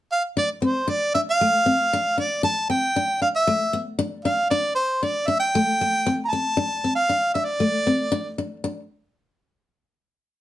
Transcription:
0.12 harmonica F5
0.37 steel-string acoustic guitar D4, harmonica D5
0.62 steel-string acoustic guitar C4, harmonica C5
0.88 steel-string acoustic guitar D4, harmonica D5
1.14 steel-string acoustic guitar D4, harmonica E5
1.30 harmonica F5
1.41 steel-string acoustic guitar A3
1.66 steel-string acoustic guitar C4
1.93 steel-string acoustic guitar D4
2.18 steel-string acoustic guitar D4, harmonica D5
2.43 steel-string acoustic guitar D4, harmonica A5
2.70 steel-string acoustic guitar C4, harmonica G5
2.96 steel-string acoustic guitar D4
3.22 steel-string acoustic guitar D4, harmonica F5
3.36 harmonica E5
3.47 steel-string acoustic guitar A3
3.73 steel-string acoustic guitar B3
3.99 steel-string acoustic guitar D4
4.25 steel-string acoustic guitar D4, harmonica F5
4.50 steel-string acoustic guitar D4, harmonica D5
4.75 harmonica C5
5.03 steel-string acoustic guitar D4, harmonica D5
5.27 steel-string acoustic guitar D4, harmonica E5
5.40 harmonica G5
5.55 steel-string acoustic guitar A3
5.81 steel-string acoustic guitar A#3
6.07 steel-string acoustic guitar C4
6.25 harmonica A5 A#5
6.33 steel-string acoustic guitar C4
6.57 steel-string acoustic guitar D4
6.84 steel-string acoustic guitar C4
6.95 harmonica F5
7.09 steel-string acoustic guitar D4
7.34 steel-string acoustic guitar D4, harmonica E5
7.45 harmonica D5
7.60 steel-string acoustic guitar A3
7.87 steel-string acoustic guitar C4
8.12 steel-string acoustic guitar D4
8.38 steel-string acoustic guitar D4
8.64 steel-string acoustic guitar D4

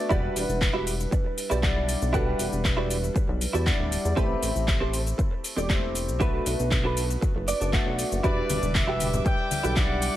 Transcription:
0.09 analog synth bass E1, grand piano G3 D4 E4 B4 F#5, clean electric guitar E4 F#4 G4 D5, kick, shaker
0.36 analog synth bass E1, open hi-hat, shaker
0.49 analog synth bass E1, shaker
0.61 kick, clap, shaker
0.73 clean electric guitar E4 F#4 G4 E5
0.87 open hi-hat, shaker
1.00 shaker
1.11 muted clean electric guitar stroke, kick, shaker
1.24 muted clean electric guitar stroke
1.38 open hi-hat, shaker
1.50 analog synth bass B1, clean electric guitar E4 F#4 G4 D5, shaker
1.62 grand piano G3 D4 E4 D5 F#5, kick, clap, shaker
1.75 muted clean electric guitar stroke
1.89 open hi-hat, shaker
2.02 analog synth bass B1, shaker
2.13 grand piano G3 D4 E4 B4 F#5, clean electric guitar E4 F#4 G4 A4, kick, shaker
2.39 analog synth bass E1, open hi-hat, shaker
2.52 analog synth bass E1, shaker
2.65 kick, clap, shaker
2.77 clean electric guitar E4 F#4 G4 D5
2.90 open hi-hat, shaker
3.04 shaker
3.15 muted clean electric guitar stroke, kick, shaker
3.28 analog synth bass B1, muted clean electric guitar stroke
3.41 open hi-hat, shaker
3.53 analog synth bass E2, clean electric guitar E4 F#4 G4 D5, shaker
3.66 grand piano G3 D4 E4 D5 F#5, clean electric guitar D5, kick, clap, shaker
3.79 analog synth bass D1, muted clean electric guitar stroke
3.92 open hi-hat, shaker
4.05 analog synth bass E2, shaker
4.16 analog synth bass A1, grand piano A3 C4 E4 G4 B5, clean electric guitar C4 G4 A4 B4, kick, shaker
4.43 analog synth bass A1, open hi-hat, shaker
4.56 analog synth bass A1, shaker
4.68 kick, clap, shaker
4.80 clean electric guitar C4 G4 A4 C5
4.93 open hi-hat, shaker
5.07 shaker
5.18 muted clean electric guitar stroke, kick, shaker
5.31 muted clean electric guitar stroke
5.44 open hi-hat, shaker
5.56 analog synth bass E1, clean electric guitar C4 G4 A4 D5, shaker
5.69 grand piano A3 C4 E4 G4, kick, clap, shaker
5.82 muted clean electric guitar stroke
5.95 open hi-hat, shaker
6.08 analog synth bass B1, shaker
6.19 grand piano A3 B3 D4 F#4 B4, clean electric guitar D4 F#4 A4 B4, kick, shaker
6.46 analog synth bass B1, open hi-hat, shaker
6.59 analog synth bass B1, shaker
6.71 kick, clap, shaker
6.84 clean electric guitar D4 F#4 A4 B4
6.97 open hi-hat, shaker
7.10 shaker
7.21 muted clean electric guitar stroke, kick, shaker
7.35 analog synth bass F#1, muted clean electric guitar stroke
7.48 clean electric guitar D5, open hi-hat, shaker
7.60 analog synth bass F#1, clean electric guitar D4 F#4 A4 D5, shaker
7.73 grand piano A3 B3 D4 F#4 D5, clean electric guitar F#5, kick, clap, shaker
7.86 analog synth bass B1, muted clean electric guitar stroke
7.99 open hi-hat, shaker
8.12 analog synth bass F#1, shaker
8.23 analog synth bass E1, grand piano G3 D4 E4 B4 E5, string section G3 E5 D6, clean electric guitar E4 F#4 G4 D5, trumpet section D5, kick, shaker
8.50 analog synth bass E1, open hi-hat, high conga, shaker
8.63 analog synth bass E1, high conga, shaker
8.75 trumpet section E5, kick, clap, shaker
8.87 clean electric guitar E4 F#4 G4 A4
9.00 open hi-hat, high conga, shaker
9.14 low conga, shaker
9.25 trumpet section G5, muted clean electric guitar stroke, kick, shaker
9.38 muted clean electric guitar stroke
9.51 open hi-hat, high conga, shaker
9.63 analog synth bass B1, clean electric guitar E4 F#4 G4 A4, shaker
9.76 grand piano G3 D4 E4 D5 F#5, trumpet section F#5, kick, clap, shaker
9.89 muted clean electric guitar stroke
10.02 open hi-hat, shaker

